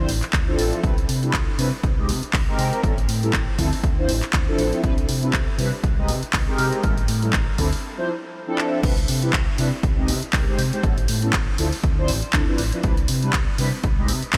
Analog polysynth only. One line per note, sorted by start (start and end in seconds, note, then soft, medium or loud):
0.47 0.81 F3 medium
0.47 0.81 C4 medium
0.47 0.81 D4 medium
0.47 0.81 E4 medium
0.47 0.81 A4 loud
0.83 0.93 G3 medium
0.83 0.93 C4 medium
0.83 0.93 D4 medium
0.83 0.93 E4 medium
0.83 0.93 B4 loud
1.22 1.35 G3 medium
1.22 1.35 C4 medium
1.22 1.35 D4 medium
1.22 1.35 E4 medium
1.22 1.35 B4 medium
1.58 1.68 G3 medium
1.58 1.68 C4 medium
1.58 1.68 D4 medium
1.58 1.68 E4 medium
1.58 1.68 B4 medium
1.98 2.10 G#3 medium
1.98 2.10 C4 medium
1.98 2.10 D#4 medium
1.98 2.10 G4 medium
1.98 2.10 D#5 medium
2.47 2.81 G#3 medium
2.47 2.81 C4 medium
2.47 2.81 D#4 medium
2.47 2.81 G4 medium
2.47 2.81 A#4 loud
2.83 2.93 G3 medium
2.83 2.93 B3 medium
2.83 2.93 C#4 medium
2.83 2.93 E4 medium
2.83 2.93 A4 loud
3.22 3.35 G3 medium
3.22 3.35 B3 medium
3.22 3.35 C#4 medium
3.22 3.35 E4 medium
3.22 3.35 A4 medium
3.58 3.68 F3 medium
3.58 3.68 C4 medium
3.58 3.68 D4 medium
3.58 3.68 E4 medium
3.58 3.68 A4 medium
3.97 4.10 F3 medium
3.97 4.10 C4 medium
3.97 4.10 D4 medium
3.97 4.10 E4 medium
3.97 4.10 C5 medium
4.47 4.81 F3 medium
4.47 4.81 C4 medium
4.47 4.81 D4 medium
4.47 4.81 E4 medium
4.47 4.81 A4 loud
4.83 4.93 G3 medium
4.83 4.93 C4 medium
4.83 4.93 D4 medium
4.83 4.93 E4 medium
4.83 4.93 B4 loud
5.22 5.34 G3 medium
5.22 5.34 C4 medium
5.22 5.35 D4 medium
5.22 5.35 E4 medium
5.22 5.35 B4 medium
5.58 5.68 G3 medium
5.58 5.68 C4 medium
5.58 5.68 D4 medium
5.58 5.68 E4 medium
5.58 5.68 B4 medium
5.97 6.09 G#3 medium
5.97 6.10 C4 medium
5.97 6.10 D#4 medium
5.97 6.10 G4 medium
5.97 6.10 D#5 medium
6.47 6.81 G#3 medium
6.47 6.81 C4 medium
6.47 6.81 D#4 medium
6.47 6.81 G4 medium
6.47 6.81 A#4 loud
6.83 6.93 G3 medium
6.83 6.93 B3 medium
6.83 6.93 C#4 medium
6.83 6.93 E4 medium
6.83 6.93 A4 loud
7.22 7.34 G3 medium
7.22 7.34 B3 medium
7.22 7.35 C#4 medium
7.22 7.35 E4 medium
7.22 7.35 A4 medium
7.58 7.68 F3 medium
7.58 7.68 C4 medium
7.58 7.68 D4 medium
7.58 7.68 E4 medium
7.58 7.68 A4 medium
7.97 8.09 F3 medium
7.97 8.10 C4 medium
7.97 8.10 D4 medium
7.97 8.10 E4 medium
7.97 8.10 C5 medium
8.47 8.80 F3 medium
8.47 8.81 C4 medium
8.47 8.81 D4 medium
8.47 8.81 E4 medium
8.47 8.81 A4 loud
8.83 8.93 G3 medium
8.83 8.93 C4 medium
8.83 8.93 D4 medium
8.83 8.93 E4 medium
8.83 8.93 B4 loud
9.22 9.34 G3 medium
9.22 9.35 C4 medium
9.22 9.35 D4 medium
9.22 9.35 E4 medium
9.22 9.35 B4 medium
9.58 9.68 G3 medium
9.58 9.68 C4 medium
9.58 9.68 D4 medium
9.58 9.68 E4 medium
9.58 9.68 B4 medium
9.97 10.09 G#3 medium
9.97 10.10 C4 medium
9.97 10.10 D#4 medium
9.97 10.10 G4 medium
9.97 10.10 D#5 medium
10.33 10.43 G#3 medium
10.33 10.43 C4 medium
10.33 10.43 D#4 medium
10.33 10.43 G4 medium
10.33 10.43 A#4 medium
10.48 10.60 G#3 medium
10.48 10.60 C4 medium
10.48 10.60 D#4 medium
10.48 10.60 G4 medium
10.48 10.60 C5 medium
10.72 10.81 G#3 medium
10.72 10.81 C4 medium
10.72 10.81 D#4 medium
10.72 10.81 G4 medium
10.72 10.81 C5 medium
10.83 10.93 G3 medium
10.83 10.93 B3 medium
10.83 10.93 C#4 medium
10.83 10.93 E4 medium
10.83 10.93 A4 loud
11.22 11.35 G3 medium
11.22 11.35 B3 medium
11.22 11.35 C#4 medium
11.22 11.35 E4 medium
11.22 11.35 A4 medium
11.58 11.68 F3 medium
11.58 11.68 C4 medium
11.58 11.68 D4 medium
11.58 11.68 E4 medium
11.58 11.68 A4 medium
11.97 12.10 F3 medium
11.97 12.10 C4 medium
11.97 12.10 D4 medium
11.97 12.10 E4 medium
11.97 12.10 C5 medium
12.33 12.43 F3 medium
12.33 12.43 C4 medium
12.33 12.43 D4 medium
12.33 12.43 E4 medium
12.33 12.43 A4 medium
12.48 12.60 F3 medium
12.48 12.60 C4 medium
12.48 12.60 D4 medium
12.48 12.60 E4 medium
12.48 12.60 B4 medium
12.73 12.81 F3 medium
12.73 12.81 C4 medium
12.73 12.81 D4 medium
12.73 12.81 E4 medium
12.73 12.81 B4 medium
12.83 12.93 G3 medium
12.83 12.93 C4 medium
12.83 12.93 D4 medium
12.83 12.93 E4 medium
12.83 12.94 B4 loud
13.22 13.35 G3 medium
13.22 13.35 C4 medium
13.22 13.35 D4 medium
13.22 13.35 E4 medium
13.22 13.35 B4 medium
13.58 13.68 G3 medium
13.58 13.68 C4 medium
13.58 13.68 D4 medium
13.58 13.68 E4 medium
13.58 13.68 B4 medium
13.97 14.10 G#3 medium
13.97 14.10 C4 medium
13.97 14.10 D#4 medium
13.97 14.10 G4 medium
13.97 14.10 D#5 medium
14.33 14.38 G#3 medium
14.33 14.38 C4 medium
14.33 14.38 D#4 medium
14.33 14.38 G4 medium
14.33 14.38 A#4 medium